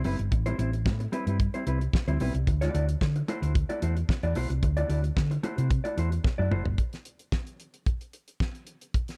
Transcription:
0.04 fingered electric bass F#1, clean electric guitar G3 C4 E4 B4, open hi-hat
0.19 fingered electric bass G1, muted clean electric guitar stroke, closed hi-hat
0.31 fingered electric bass A1, muted clean electric guitar stroke, kick, closed hi-hat
0.46 clean electric guitar G3 C4 E4 C5, closed hi-hat
0.58 fingered electric bass A1, clean electric guitar G3 C4 E4 C5, closed hi-hat
0.73 muted clean electric guitar stroke, closed hi-hat
0.85 fingered electric bass A2, muted clean electric guitar stroke, kick, snare
1.00 muted clean electric guitar stroke, closed hi-hat
1.12 clean electric guitar G3 C4 E4 B4, closed hi-hat
1.27 fingered electric bass G2, clean electric guitar G3 C4 E4 B4, closed hi-hat
1.40 kick, closed hi-hat
1.54 clean electric guitar G3 C4 E4 C5, closed hi-hat
1.67 fingered electric bass C2, clean electric guitar G3 C4 E4 B4, closed hi-hat
1.81 muted clean electric guitar stroke, closed hi-hat
1.93 muted clean electric guitar stroke, kick, snare
2.08 fingered electric bass D2, clean electric guitar G3 C4 E4 C5, closed hi-hat
2.20 fingered electric bass B1, clean electric guitar G3 C4 E4 B4, open hi-hat
2.34 fingered electric bass C2, muted clean electric guitar stroke, closed hi-hat
2.47 fingered electric bass D2, muted clean electric guitar stroke, kick, closed hi-hat
2.61 clean electric guitar A3 E4 F#4 D5, snare, closed hi-hat
2.74 fingered electric bass D2, clean electric guitar A3 E4 F#4 D5, closed hi-hat
2.88 muted clean electric guitar stroke, closed hi-hat
3.01 fingered electric bass D3, muted clean electric guitar stroke, kick, snare
3.16 muted clean electric guitar stroke, closed hi-hat
3.28 clean electric guitar A3 E4 F#4 C5, closed hi-hat
3.42 fingered electric bass D2, clean electric guitar A3 E4 F#4 C5, closed hi-hat
3.55 muted clean electric guitar stroke, kick, closed hi-hat
3.69 clean electric guitar A3 E4 F#4 D5, closed hi-hat
3.82 fingered electric bass E2, clean electric guitar A3 E4 F#4 C5, closed hi-hat
3.96 muted clean electric guitar stroke, closed hi-hat
4.09 muted clean electric guitar stroke, kick, snare
4.23 fingered electric bass E2, clean electric guitar A3 E4 F#4 D5, closed hi-hat
4.35 fingered electric bass B1, clean electric guitar A3 E4 F#4 C5, open hi-hat
4.50 fingered electric bass C2, muted clean electric guitar stroke, closed hi-hat
4.63 fingered electric bass D2, muted clean electric guitar stroke, kick, closed hi-hat
4.77 clean electric guitar A3 E4 F#4 D5, closed hi-hat
4.89 fingered electric bass D2, clean electric guitar A3 E4 F#4 D5, closed hi-hat
5.04 muted clean electric guitar stroke, closed hi-hat
5.16 fingered electric bass D3, muted clean electric guitar stroke, kick, snare
5.31 muted clean electric guitar stroke, closed hi-hat
5.43 clean electric guitar A3 E4 F#4 C5, closed hi-hat
5.57 fingered electric bass C3, clean electric guitar A3 E4 F#4 C5, closed hi-hat
5.70 muted clean electric guitar stroke, kick, closed hi-hat
5.84 clean electric guitar A3 E4 F#4 D5, closed hi-hat
5.97 fingered electric bass E2, clean electric guitar A3 E4 F#4 C5, closed hi-hat
6.12 muted clean electric guitar stroke, closed hi-hat
6.24 muted clean electric guitar stroke, kick, snare
6.38 fingered electric bass F#2, clean electric guitar A3 E4 F#4 D5
6.51 fingered electric bass F#1, clean electric guitar A3 E4 F#4 C5, mid tom
6.65 fingered electric bass G1, muted clean electric guitar stroke, floor tom
6.78 kick, closed hi-hat
6.93 snare, closed hi-hat
7.05 closed hi-hat
7.19 closed hi-hat
7.32 kick, snare
7.47 closed hi-hat
7.60 closed hi-hat
7.74 closed hi-hat
7.86 kick, closed hi-hat
8.01 closed hi-hat
8.13 closed hi-hat
8.28 closed hi-hat
8.40 kick, snare
8.55 closed hi-hat
8.67 closed hi-hat
8.81 closed hi-hat
8.94 kick, closed hi-hat
9.08 snare, closed hi-hat

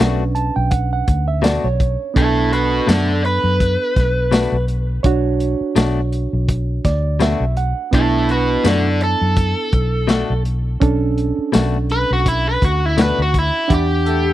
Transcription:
Already playing: reed electric piano C#4 D4 B4
0.00 fingered electric bass B1, clean electric guitar B2 A3 D4 F#4, snare
0.35 reed electric piano A5, closed hi-hat
0.56 fingered electric bass B1, reed electric piano G5
0.71 reed electric piano F#5, kick, closed hi-hat
0.93 reed electric piano F#5
1.08 fingered electric bass D2, kick, closed hi-hat
1.28 reed electric piano E5
1.42 clean electric guitar B2 A3 D4 F#4, reed electric piano D5, snare, closed hi-hat, tambourine
1.64 fingered electric bass B1, reed electric piano C#5
1.80 kick, closed hi-hat
2.14 fingered electric bass B1, reed electric piano B3 D4 A4, overdriven electric guitar E4 A4, kick, closed hi-hat
2.53 overdriven electric guitar F#4 B4, closed hi-hat
2.87 fingered electric bass F#2, clean electric guitar B2 A3 D4 F#4, overdriven electric guitar A4 D5, snare, closed hi-hat, tambourine
3.25 overdriven electric guitar B4, closed hi-hat
3.44 fingered electric bass F#2
3.60 kick, closed hi-hat
3.96 fingered electric bass B1, kick, snare, closed hi-hat
4.32 clean electric guitar B2 A3 D4 F#4, snare, closed hi-hat, tambourine
4.52 fingered electric bass B1
4.68 closed hi-hat
5.03 fingered electric bass B1, reed electric piano D4 F#4 C#5, kick, closed hi-hat
5.40 closed hi-hat
5.61 muted fingered electric bass stroke
5.76 fingered electric bass B1, clean electric guitar B2 A3 D4 F#4, snare, closed hi-hat, tambourine
6.13 closed hi-hat
6.33 fingered electric bass B1
6.48 kick, closed hi-hat
6.84 fingered electric bass D2, reed electric piano D5, kick, snare, closed hi-hat
7.20 clean electric guitar B2 A3 D4 F#4, reed electric piano E5, snare, closed hi-hat, tambourine
7.40 fingered electric bass B1
7.57 reed electric piano F#5, closed hi-hat
7.91 fingered electric bass B1, reed electric piano B3 D4 E4, overdriven electric guitar E4 A4, kick, closed hi-hat
8.29 overdriven electric guitar F#4 B4, closed hi-hat
8.64 fingered electric bass F#2, clean electric guitar B2 A3 D4 F#4, overdriven electric guitar A4 D5, snare, closed hi-hat, tambourine
9.01 overdriven electric guitar A4, closed hi-hat
9.21 fingered electric bass F#2
9.36 kick, closed hi-hat
9.73 fingered electric bass B1, kick, closed hi-hat
10.07 clean electric guitar B2 A3 D4 F#4, snare, closed hi-hat, tambourine
10.30 fingered electric bass B1
10.45 closed hi-hat
10.80 fingered electric bass B1, reed electric piano C#4 D4 A4, kick, closed hi-hat
11.18 closed hi-hat
11.38 muted fingered electric bass stroke
11.53 fingered electric bass B1, clean electric guitar B2 A3 D4 F#4, snare, closed hi-hat, tambourine
11.90 overdriven electric guitar B4, closed hi-hat
12.11 fingered electric bass B1, overdriven electric guitar F#4
12.26 overdriven electric guitar E4, kick, closed hi-hat
12.49 overdriven electric guitar B4
12.62 fingered electric bass D2, overdriven electric guitar F#4, kick, closed hi-hat
12.86 overdriven electric guitar E4
12.97 clean electric guitar B2 A3 D4 F#4, snare, closed hi-hat, tambourine
13.01 overdriven electric guitar B4
13.18 fingered electric bass D2, overdriven electric guitar F#4
13.34 kick, closed hi-hat
13.39 overdriven electric guitar E4
13.68 fingered electric bass E2, reed electric piano D4 G4 F#5, horn section D4 E4 G4 D5, kick, closed hi-hat
13.74 overdriven electric guitar G4
14.05 horn section A3 E4 G4 A4, closed hi-hat

